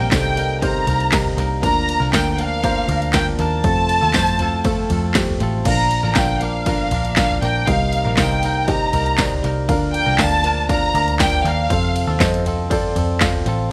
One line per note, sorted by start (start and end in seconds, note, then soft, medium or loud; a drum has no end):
0.00 0.11 A#1 medium
0.00 0.33 C3 medium
0.00 0.38 C3 medium
0.00 0.33 G3 medium
0.00 0.35 G3 medium
0.00 0.36 A#3 medium
0.00 0.12 C4 medium
0.00 0.12 D#4 medium
0.00 0.37 D#4 medium
0.00 0.12 G4 medium
0.00 0.37 A#4 medium
0.00 1.13 A#4 medium
0.00 0.12 G5 medium
0.11 0.84 C2 loud
0.11 0.58 C4 medium
0.11 0.58 D#4 medium
0.11 0.58 G4 medium
0.11 0.58 A4 medium
0.11 0.59 G5 medium
0.11 kick loud
0.11 snare loud
0.11 clap medium
0.11 ride medium
0.11 tambourine medium
0.36 0.61 G3 medium
0.36 0.61 A#3 medium
0.36 0.62 D#4 medium
0.36 0.63 A#4 medium
0.36 ride medium
0.61 0.87 C3 loud
0.61 0.85 G3 medium
0.61 0.87 A#3 medium
0.61 1.08 C4 medium
0.61 1.08 D#4 medium
0.61 0.88 D#4 medium
0.61 1.08 G4 medium
0.61 0.88 A#4 loud
0.61 1.08 C5 medium
0.61 1.38 A#5 medium
0.61 kick loud
0.61 ride medium
0.86 1.34 C2 medium
0.86 1.35 G3 medium
0.86 1.38 A#3 medium
0.86 1.38 D#4 medium
0.86 1.40 A#4 medium
0.86 floor tom medium
0.86 ride medium
1.00 ride soft
1.12 1.59 C4 medium
1.12 1.59 D#4 medium
1.12 1.59 G4 medium
1.12 1.59 A#4 medium
1.12 kick loud
1.12 snare loud
1.12 clap loud
1.12 ride loud
1.12 tambourine medium
1.25 floor tom medium
1.37 1.63 C2 medium
1.37 1.62 G3 medium
1.37 1.62 A#3 medium
1.37 1.64 D#4 medium
1.37 1.64 A#4 medium
1.37 snare soft
1.37 ride medium
1.62 1.98 D2 loud
1.62 2.34 D3 medium
1.62 2.00 F3 medium
1.62 2.08 A#3 medium
1.62 2.00 A#3 medium
1.62 2.09 D4 medium
1.62 2.00 D4 medium
1.62 2.09 F4 medium
1.62 2.09 A#4 medium
1.62 1.99 A#4 medium
1.62 2.10 A#5 loud
1.62 kick loud
1.62 ride medium
1.89 ride medium
2.00 2.12 C2 medium
2.00 2.39 D3 medium
2.00 2.36 F3 medium
2.00 2.38 A#3 medium
2.00 2.39 D4 medium
2.00 2.38 A#4 medium
2.13 2.85 D2 loud
2.13 2.59 A#3 medium
2.13 2.59 D4 medium
2.13 2.59 F4 medium
2.13 2.59 A#4 medium
2.13 2.30 G5 loud
2.13 kick loud
2.13 snare loud
2.13 clap medium
2.13 ride medium
2.13 tambourine medium
2.33 2.39 G5 medium
2.37 2.62 F3 medium
2.37 2.63 A#3 medium
2.37 2.63 D4 medium
2.37 2.64 A#4 medium
2.37 3.14 F5 loud
2.37 ride medium
2.63 2.88 D3 loud
2.63 2.86 F3 medium
2.63 2.88 A#3 loud
2.63 3.10 A#3 medium
2.63 3.10 D4 medium
2.63 2.89 D4 loud
2.63 3.10 F4 medium
2.63 2.90 A#4 loud
2.63 3.10 C5 medium
2.63 kick loud
2.63 ride medium
2.88 3.35 D2 medium
2.88 3.38 F3 medium
2.88 3.38 A#3 medium
2.88 3.39 D4 medium
2.88 3.40 A#4 medium
2.88 floor tom medium
2.88 ride medium
3.02 ride soft
3.13 3.60 A#3 medium
3.13 3.60 D4 medium
3.13 3.60 F4 medium
3.13 3.60 A#4 medium
3.13 3.25 G5 loud
3.13 kick loud
3.13 snare loud
3.13 clap medium
3.13 ride medium
3.13 tambourine medium
3.26 floor tom medium
3.38 3.63 D#2 medium
3.38 3.62 F3 medium
3.38 3.64 A#3 medium
3.38 3.65 D4 medium
3.38 3.66 A#4 medium
3.38 5.12 A5 loud
3.38 snare soft
3.38 ride medium
3.63 3.99 F2 loud
3.63 4.36 C3 medium
3.63 4.02 F3 medium
3.63 4.10 A3 medium
3.63 4.10 C4 medium
3.63 4.02 C4 medium
3.63 4.10 F4 medium
3.63 4.01 F4 medium
3.63 4.10 A4 medium
3.63 4.00 A4 medium
3.63 kick loud
3.63 ride medium
3.89 ride medium
4.01 4.14 D#2 medium
4.01 4.38 F3 medium
4.01 4.39 C4 medium
4.01 4.40 F4 medium
4.01 4.40 A4 medium
4.14 4.86 F2 loud
4.14 4.61 A3 medium
4.14 4.61 C4 medium
4.14 4.61 F4 medium
4.14 4.61 C5 loud
4.14 kick loud
4.14 snare loud
4.14 clap medium
4.14 ride medium
4.14 tambourine medium
4.27 ride soft
4.39 4.63 F3 medium
4.39 4.64 C4 medium
4.39 4.65 F4 medium
4.39 4.65 A4 medium
4.39 floor tom medium
4.39 ride medium
4.64 4.88 F3 medium
4.64 5.11 A3 medium
4.64 5.11 C4 medium
4.64 4.89 C4 medium
4.64 5.11 F4 medium
4.64 4.90 F4 loud
4.64 5.11 A4 medium
4.64 4.91 A4 loud
4.64 kick loud
4.64 ride medium
4.89 5.37 F2 medium
4.89 5.39 F3 medium
4.89 5.40 C4 medium
4.89 5.42 F4 medium
4.89 5.42 A4 medium
4.89 floor tom medium
4.89 ride medium
5.14 5.62 A3 medium
5.14 5.62 C4 medium
5.14 5.62 F4 medium
5.14 5.62 G4 medium
5.14 kick loud
5.14 snare loud
5.14 clap loud
5.14 ride medium
5.14 tambourine medium
5.28 floor tom medium
5.40 5.64 A1 medium
5.40 5.64 F3 medium
5.40 5.66 C4 medium
5.40 5.67 F4 medium
5.40 5.67 A4 medium
5.40 snare soft
5.40 ride medium
5.65 6.01 A#1 loud
5.65 6.38 A#2 medium
5.65 6.03 F3 medium
5.65 6.38 F3 medium
5.65 6.03 A#3 medium
5.65 6.12 D4 medium
5.65 6.02 D4 medium
5.65 6.12 F4 medium
5.65 6.12 A#4 medium
5.65 6.02 A#4 medium
5.65 6.12 D5 medium
5.65 6.12 F5 medium
5.65 6.13 A#5 loud
5.65 kick loud
5.65 crash medium
5.65 ride medium
5.91 ride medium
6.03 6.15 A1 medium
6.03 6.42 A#2 medium
6.03 6.42 D3 medium
6.03 6.39 F3 medium
6.03 6.41 A#3 medium
6.03 6.41 D4 medium
6.03 6.41 A#4 medium
6.15 6.88 A#1 loud
6.15 6.62 D4 medium
6.15 6.62 F4 medium
6.15 6.62 A#4 medium
6.15 6.62 D5 medium
6.15 6.62 F5 medium
6.15 6.41 G5 medium
6.15 kick loud
6.15 snare loud
6.15 clap medium
6.15 ride medium
6.15 tambourine medium
6.40 6.66 F3 medium
6.40 6.67 A#3 medium
6.40 6.67 D4 medium
6.40 6.68 A#4 medium
6.40 7.16 F5 medium
6.40 ride medium
6.66 6.92 A#2 medium
6.66 6.92 D3 medium
6.66 6.90 F3 loud
6.66 6.91 A#3 medium
6.66 7.13 D4 medium
6.66 6.92 D4 loud
6.66 7.13 F4 medium
6.66 7.13 A#4 medium
6.66 6.93 A#4 medium
6.66 7.13 D5 medium
6.66 7.13 F5 medium
6.66 kick loud
6.66 ride medium
6.91 7.38 A#1 loud
6.91 7.40 F3 medium
6.91 7.42 A#3 medium
6.91 7.43 D4 medium
6.91 7.44 A#4 medium
6.91 floor tom medium
6.91 ride medium
7.05 ride soft
7.16 7.63 D4 medium
7.16 7.63 F4 medium
7.16 7.63 A#4 medium
7.16 7.63 D5 medium
7.16 7.40 F5 loud
7.16 7.63 F5 medium
7.16 kick loud
7.16 snare loud
7.16 clap medium
7.16 ride medium
7.16 tambourine medium
7.29 floor tom medium
7.41 7.66 A#1 medium
7.41 7.66 F3 medium
7.41 7.67 A#3 medium
7.41 7.68 D4 medium
7.41 7.69 A#4 medium
7.41 7.66 G5 medium
7.41 snare soft
7.41 ride medium
7.67 8.02 C2 loud
7.67 8.39 C3 medium
7.67 8.05 G3 medium
7.67 8.39 G3 medium
7.67 8.05 A#3 medium
7.67 8.13 D#4 medium
7.67 8.04 D#4 medium
7.67 8.13 G4 medium
7.67 8.13 A#4 medium
7.67 8.04 A#4 medium
7.67 8.13 C5 medium
7.67 8.13 D#5 medium
7.67 8.18 F5 medium
7.67 kick loud
7.67 ride medium
7.93 ride medium
8.05 8.17 A#1 medium
8.05 8.44 C3 medium
8.05 8.41 G3 medium
8.05 8.43 A#3 medium
8.05 8.43 D#4 medium
8.05 8.43 A#4 medium
8.17 8.89 C2 loud
8.17 8.64 D#4 medium
8.17 8.64 G4 medium
8.17 8.64 A#4 medium
8.17 8.64 C5 medium
8.17 8.64 F5 medium
8.17 8.65 G5 medium
8.17 kick loud
8.17 snare loud
8.17 clap medium
8.17 ride medium
8.17 tambourine medium
8.42 8.67 G3 medium
8.42 8.68 A#3 medium
8.42 8.68 D#4 medium
8.42 8.69 A#4 medium
8.42 ride medium
8.67 8.93 C3 medium
8.67 8.91 G3 loud
8.67 8.92 A#3 loud
8.67 9.14 D#4 medium
8.67 8.94 D#4 loud
8.67 9.14 G4 medium
8.67 9.14 A#4 medium
8.67 8.94 A#4 loud
8.67 9.14 C5 medium
8.67 9.14 D#5 medium
8.67 9.44 A#5 medium
8.67 kick loud
8.67 ride medium
8.92 9.40 C2 loud
8.92 9.41 G3 medium
8.92 9.44 A#3 medium
8.92 9.44 D#4 medium
8.92 9.46 A#4 medium
8.92 floor tom medium
8.92 ride medium
9.06 ride soft
9.18 9.64 D#4 medium
9.18 9.65 G4 medium
9.18 9.65 A#4 medium
9.18 9.64 C5 medium
9.18 9.64 D5 medium
9.18 kick loud
9.18 snare loud
9.18 clap loud
9.18 ride medium
9.18 tambourine medium
9.31 floor tom medium
9.43 9.69 C2 medium
9.43 9.68 G3 medium
9.43 9.68 A#3 medium
9.43 9.69 D#4 medium
9.43 9.70 A#4 medium
9.43 snare soft
9.43 ride medium
9.68 10.04 D2 loud
9.68 10.40 D3 medium
9.68 10.06 F3 medium
9.68 10.06 A#3 medium
9.68 10.15 D4 medium
9.68 10.06 D4 medium
9.68 10.15 F4 medium
9.68 10.15 A#4 medium
9.68 10.05 A#4 medium
9.68 10.15 D5 medium
9.68 10.15 F5 medium
9.68 kick loud
9.68 ride medium
9.94 10.17 G5 loud
9.94 ride medium
10.06 10.18 C2 medium
10.06 10.45 D3 medium
10.06 10.42 F3 medium
10.06 10.44 A#3 medium
10.06 10.44 D4 medium
10.06 10.44 A#4 medium
10.18 10.91 D2 loud
10.18 10.65 D4 medium
10.18 10.65 F4 medium
10.18 10.65 A#4 medium
10.18 10.65 D5 medium
10.18 10.65 F5 medium
10.18 10.70 A5 loud
10.18 kick loud
10.18 snare loud
10.18 clap loud
10.18 ride medium
10.18 tambourine medium
10.43 10.68 F3 medium
10.43 10.69 A#3 medium
10.43 10.69 D4 medium
10.43 10.70 A#4 medium
10.43 ride medium
10.69 10.94 D3 medium
10.69 10.93 F3 loud
10.69 10.94 A#3 medium
10.69 11.15 D4 medium
10.69 10.95 D4 loud
10.69 11.15 F4 medium
10.69 11.15 A#4 medium
10.69 10.95 A#4 loud
10.69 11.15 D5 medium
10.69 11.15 F5 medium
10.69 11.17 A#5 loud
10.69 kick loud
10.69 ride medium
10.94 11.41 D2 loud
10.94 11.44 F3 medium
10.94 11.44 A#3 medium
10.94 11.45 D4 medium
10.94 11.46 A#4 medium
10.94 floor tom medium
10.94 ride medium
11.08 ride soft
11.19 11.66 D4 medium
11.19 11.66 F4 medium
11.19 11.66 A#4 medium
11.19 11.66 D5 medium
11.19 11.66 G5 medium
11.19 11.45 G5 loud
11.19 kick loud
11.19 snare loud
11.19 clap medium
11.19 ride medium
11.19 tambourine medium
11.33 floor tom medium
11.44 11.68 D#2 loud
11.44 11.69 F3 medium
11.44 11.70 A#3 medium
11.44 11.71 D4 medium
11.44 11.71 A#4 medium
11.44 12.21 F5 medium
11.44 snare soft
11.44 ride medium
11.70 12.05 F2 loud
11.70 12.42 C3 medium
11.70 12.08 F3 medium
11.70 12.16 C4 medium
11.70 12.08 C4 medium
11.70 12.16 F4 medium
11.70 12.07 F4 medium
11.70 12.16 A4 medium
11.70 12.06 A4 medium
11.70 12.16 C5 medium
11.70 12.16 F5 medium
11.70 kick loud
11.70 ride medium
11.96 ride medium
12.07 12.19 D#2 medium
12.07 12.44 F3 medium
12.07 12.45 C4 medium
12.07 12.46 F4 medium
12.07 12.45 A4 medium
12.20 12.92 F2 loud
12.20 12.66 C4 medium
12.20 12.66 F4 medium
12.20 12.66 A4 medium
12.20 12.66 C5 medium
12.20 12.66 D#5 loud
12.20 kick loud
12.20 snare loud
12.20 clap medium
12.20 ride medium
12.20 tambourine medium
12.34 ride soft
12.45 12.69 F3 medium
12.45 12.70 C4 medium
12.45 12.71 F4 medium
12.45 12.71 A4 medium
12.45 floor tom medium
12.45 ride medium
12.70 12.94 F3 medium
12.70 13.16 C4 medium
12.70 12.95 C4 medium
12.70 13.16 F4 medium
12.70 12.96 F4 loud
12.70 13.16 A4 medium
12.70 12.97 A4 loud
12.70 13.16 C5 medium
12.70 13.16 D5 loud
12.70 kick loud
12.70 ride medium
12.95 13.43 F2 medium
12.95 13.45 F3 medium
12.95 13.46 C4 medium
12.95 13.47 F4 medium
12.95 13.47 A4 medium
12.95 floor tom medium
12.95 ride medium
13.20 13.66 C4 medium
13.20 13.67 F4 medium
13.20 13.67 A4 medium
13.20 13.67 C5 medium
13.20 13.66 F5 medium
13.20 kick loud
13.20 snare loud
13.20 clap loud
13.20 ride medium
13.20 tambourine medium
13.34 floor tom medium
13.45 13.69 A1 medium
13.45 13.69 F3 medium
13.45 13.71 C4 medium
13.45 13.72 F4 medium
13.45 13.72 A4 medium
13.45 snare soft
13.45 ride medium